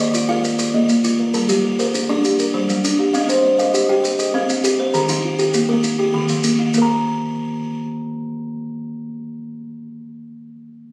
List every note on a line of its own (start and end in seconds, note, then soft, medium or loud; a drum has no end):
0.00 0.14 A#4 medium
0.00 0.29 C5 medium
0.00 0.12 D5 medium
0.00 0.44 D#5 medium
0.14 0.44 F4 medium
0.14 0.58 D5 medium
0.14 maracas medium
0.29 0.59 F4 medium
0.29 0.74 F5 medium
0.44 0.74 A#4 medium
0.44 maracas medium
0.59 1.04 D5 medium
0.59 maracas medium
0.74 1.04 A#3 medium
0.74 1.19 D#5 medium
0.89 1.19 A#3 medium
0.89 maracas medium
1.04 1.34 F4 medium
1.04 maracas medium
1.19 1.49 A#4 medium
1.34 1.64 G3 medium
1.34 1.78 A#4 medium
1.34 1.64 A5 medium
1.34 maracas medium
1.49 1.79 G3 medium
1.49 1.94 G4 medium
1.49 maracas medium
1.64 2.09 A4 medium
1.79 1.93 A#4 medium
1.79 2.24 C5 medium
1.79 maracas medium
1.94 2.24 D4 medium
1.94 2.38 A#4 medium
1.94 maracas medium
2.09 2.39 D4 medium
2.09 2.54 D5 medium
2.24 2.54 G4 medium
2.24 maracas medium
2.39 2.84 A#4 medium
2.39 maracas medium
2.54 2.84 G3 medium
2.54 2.99 C5 medium
2.69 2.99 G3 medium
2.69 maracas medium
2.84 3.14 D4 medium
2.84 maracas medium
2.99 3.29 G4 medium
3.13 3.44 C4 medium
3.13 3.58 D#5 medium
3.13 3.44 F5 medium
3.13 maracas medium
3.29 3.59 C4 medium
3.29 3.74 C5 medium
3.29 maracas medium
3.43 3.89 D5 medium
3.58 3.73 D#5 medium
3.58 4.04 F5 medium
3.58 maracas medium
3.74 4.04 G4 medium
3.74 4.18 D#5 medium
3.74 maracas medium
3.89 4.19 G4 medium
3.89 4.34 G5 medium
4.04 4.34 C5 medium
4.04 maracas medium
4.19 4.64 D#5 medium
4.19 maracas medium
4.34 4.64 C4 medium
4.34 4.79 F5 medium
4.50 4.79 C4 medium
4.50 maracas medium
4.64 4.93 G4 medium
4.64 maracas medium
4.79 5.09 C5 medium
4.94 5.24 D#3 medium
4.94 5.38 G4 medium
4.94 5.24 A#5 medium
4.94 maracas medium
5.09 5.39 D#3 medium
5.09 5.54 D#4 medium
5.09 maracas medium
5.24 5.69 F4 medium
5.39 5.53 G4 medium
5.39 5.84 A4 medium
5.39 maracas medium
5.54 5.84 A#3 medium
5.54 5.98 G4 medium
5.54 maracas medium
5.69 5.99 A#3 medium
5.69 6.14 A#4 medium
5.83 6.14 D#4 medium
5.83 maracas medium
5.99 6.44 G4 medium
6.14 6.44 D#3 medium
6.14 6.59 A4 medium
6.29 6.59 D#3 medium
6.29 maracas medium
6.44 6.73 A#3 medium
6.44 maracas medium
6.59 6.89 D#4 medium
6.74 10.07 A#3 medium
6.74 10.11 A#4 medium
6.74 maracas medium
6.78 10.11 A#4 medium
6.82 10.15 A#5 medium